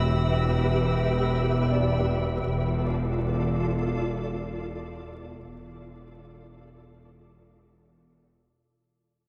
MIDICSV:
0, 0, Header, 1, 7, 480
1, 0, Start_track
1, 0, Tempo, 750000
1, 1576, Time_signature, 4, 2, 24, 8
1, 3016, Tempo, 764331
1, 5884, End_track
2, 0, Start_track
2, 0, Title_t, "Violin section"
2, 0, Program_c, 0, 48
2, 0, Note_on_c, 0, 88, 28
2, 0, Note_on_c, 0, 94, 27
2, 829, Note_off_c, 0, 94, 0
2, 1312, Note_off_c, 0, 88, 0
2, 5884, End_track
3, 0, Start_track
3, 0, Title_t, "Harp"
3, 0, Program_c, 1, 46
3, 0, Note_on_c, 1, 67, 23
3, 0, Note_on_c, 1, 76, 29
3, 1094, Note_on_c, 1, 62, 26
3, 1096, Note_on_c, 1, 74, 37
3, 1438, Note_off_c, 1, 67, 0
3, 1439, Note_off_c, 1, 76, 0
3, 3579, Note_off_c, 1, 62, 0
3, 3582, Note_off_c, 1, 74, 0
3, 4689, Note_on_c, 1, 77, 26
3, 5442, Note_off_c, 1, 77, 0
3, 5884, End_track
4, 0, Start_track
4, 0, Title_t, "Synth texture"
4, 0, Program_c, 2, 99
4, 0, Note_on_c, 2, 67, 45
4, 0, Note_on_c, 2, 71, 47
4, 0, Note_on_c, 2, 76, 50
4, 1551, Note_off_c, 2, 76, 0
4, 1552, Note_off_c, 2, 67, 0
4, 1552, Note_off_c, 2, 71, 0
4, 1586, Note_on_c, 2, 65, 49
4, 1586, Note_on_c, 2, 69, 51
4, 1586, Note_on_c, 2, 74, 51
4, 3492, Note_off_c, 2, 69, 0
4, 3495, Note_off_c, 2, 65, 0
4, 3496, Note_off_c, 2, 74, 0
4, 3500, Note_on_c, 2, 69, 51
4, 3502, Note_on_c, 2, 65, 51
4, 3503, Note_on_c, 2, 74, 47
4, 5399, Note_off_c, 2, 69, 0
4, 5401, Note_off_c, 2, 65, 0
4, 5401, Note_off_c, 2, 74, 0
4, 5884, End_track
5, 0, Start_track
5, 0, Title_t, "Cello section"
5, 0, Program_c, 3, 48
5, 0, Note_on_c, 3, 40, 34
5, 1552, Note_off_c, 3, 40, 0
5, 1578, Note_on_c, 3, 40, 38
5, 3469, Note_off_c, 3, 40, 0
5, 3494, Note_on_c, 3, 40, 40
5, 5270, Note_off_c, 3, 40, 0
5, 5884, End_track
6, 0, Start_track
6, 0, Title_t, "Double bass section"
6, 0, Program_c, 4, 48
6, 0, Note_on_c, 4, 28, 37
6, 1552, Note_off_c, 4, 28, 0
6, 1580, Note_on_c, 4, 28, 41
6, 3470, Note_off_c, 4, 28, 0
6, 3497, Note_on_c, 4, 28, 45
6, 5271, Note_off_c, 4, 28, 0
6, 5884, End_track
7, 0, Start_track
7, 0, Title_t, "Sub bass"
7, 0, Program_c, 5, 38
7, 0, Note_on_c, 5, 28, 62
7, 1552, Note_off_c, 5, 28, 0
7, 1580, Note_on_c, 5, 28, 62
7, 3470, Note_off_c, 5, 28, 0
7, 3492, Note_on_c, 5, 28, 62
7, 5396, Note_off_c, 5, 28, 0
7, 5884, End_track
0, 0, End_of_file